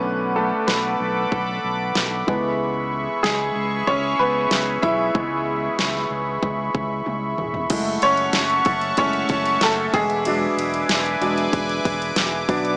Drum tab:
CC |----------------|----------------|----------------|x---------------|
RD |----------------|----------------|----------------|x-xxxxxxxxxxx-xx|
SD |----o-------o---|----o-------o---|----oo----------|----o-------o---|
T1 |----------------|----------------|------------o---|----------------|
T2 |----------------|----------------|--------------o-|----------------|
FT |----------------|----------------|---------------o|----------------|
BD |--------o-----o-|--------o-----o-|o-------o-o-----|o-----o-o-o---o-|

CC |----------------|
RD |x-xxxxxxxxxxx-xx|
SD |----o-------o---|
T1 |----------------|
T2 |----------------|
FT |----------------|
BD |--------o-o---o-|